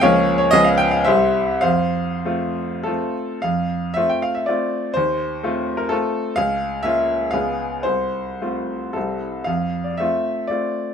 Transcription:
<<
  \new Staff \with { instrumentName = "Grand piano" } { \time 3/4 \key f \major \tempo 4 = 116 << { f''8. des''16 ees''16 f''16 g''16 f''16 e''4 | f''2 a'4 | f''4 e''16 g''16 f''16 e''16 d''4 | c''4.~ c''16 bes'16 a'4 |
f''4 e''4 f''4 | c''2 a'4 | f''8. d''16 e''4 d''4 | } \\ { des''8. r4 r16 c''4 | c''2~ c''8 r8 | r2. | r2. |
r2. | r2. | r2. | } >> }
  \new Staff \with { instrumentName = "Grand piano" } { \time 3/4 \key f \major <des, f bes des'>4 <des, f ces' des'>4 <c, g c' g'>4 | f,4 <a c' f'>4 <a c' f'>4 | f,4 <a c' f'>4 <a c' f'>4 | ees,4 <a c' f'>4 <a c' f'>4 |
des,4 <bes des' f'>4 <des, aes ces' aes'>4 | c,4 <a c' f'>4 <c, g c' e'>4 | f,4 <a c' f'>4 <a c' f'>4 | }
>>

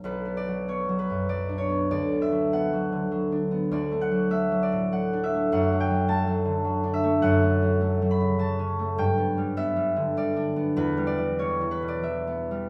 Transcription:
<<
  \new Staff \with { instrumentName = "Harp" } { \time 3/4 \key b \minor \tempo 4 = 100 <b' b''>8 d''8 cis''8 b'8 d''8 cis''8 | d''8 e''8 fis''2 | d''8 fis''8 e''8 d''8 fis''8 e''8 | fis''8 g''8 a''4. e''8 |
\key e \dorian fis''4. b''8 a''4 | g''4 e''4 d''4 | b'8 d''8 cis''8 b'16 d''16 e''4 | }
  \new Staff \with { instrumentName = "Harp" } { \clef bass \time 3/4 \key b \minor << { <fis b d'>2.~ | <fis b d'>2. | r2. | r2. |
\key e \dorian r2. | r2. | r2. | } \\ { \tuplet 3/2 { b,,8 b8 fis8 b8 fis8 fis,8 fis8 d'8 b8 } | \tuplet 3/2 { d,8 b8 fis8 b8 fis8 d8 fis8 d'8 b8 } | \tuplet 3/2 { d,8 a8 fis8 a8 fis8 a,8 fis8 d'8 a8 } | \tuplet 3/2 { fis,8 a8 fis8 a8 fis8 d8 fis8 d'8 a8 } |
\tuplet 3/2 { fis,8 a8 fis8 a8 fis8 cis8 fis8 cis'8 a8 } | \tuplet 3/2 { g,8 b8 g8 b8 g8 d8 g8 d'8 b8 } | \tuplet 3/2 { e,8 g8 e8 g8 e8 b,8 e8 b8 g8 } | } >> }
>>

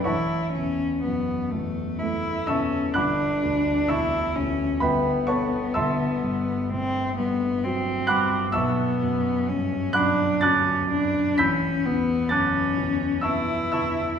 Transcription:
<<
  \new Staff \with { instrumentName = "Grand piano" } { \time 3/4 \key a \mixolydian \tempo 4 = 64 <cis'' fis'' a'' cis'''>2~ <cis'' fis'' a'' cis'''>8 <e'' a'' cis''' e'''>8 | <fis'' b'' d''' fis'''>4 <e'' a'' cis''' e'''>4 <b' e'' g'' b''>8 <cis'' fis'' a'' cis'''>8 | <e'' a'' c''' e'''>2~ <e'' a'' c''' e'''>8 <fis'' b'' d''' fis'''>8 | <e'' a'' cis''' e'''>4. <fis'' b'' d''' fis'''>8 <a'' d''' fis''' a'''>4 |
<b'' e''' g''' b'''>4 <a'' d''' fis''' a'''>4 <e'' a'' cis''' e'''>8 <e'' a'' cis''' e'''>8 | }
  \new Staff \with { instrumentName = "Grand piano" } { \clef bass \time 3/4 \key a \mixolydian a,,8 e,8 fis,8 e,8 a8 e,8 | g,,8 d,8 e,8 d,8 g,,8 <b a'>8 | g,,8 g,8 a,8 g,8 fis8 g,8 | b,,8 fis,8 g,8 fis,8 fis8 fis,8 |
a,,8 e,8 fis,8 e,8 b8 e,8 | }
  \new Staff \with { instrumentName = "Cello" } { \time 3/4 \key a \mixolydian e'8 cis'8 b8 a8 e'8 cis'8 | d'4 e'8 cis'8 b4~ | b4 c'8 b8 c'4 | b4 cis'8 d'8 cis'8 d'8 |
cis'8 b8 cis'4 e'4 | }
>>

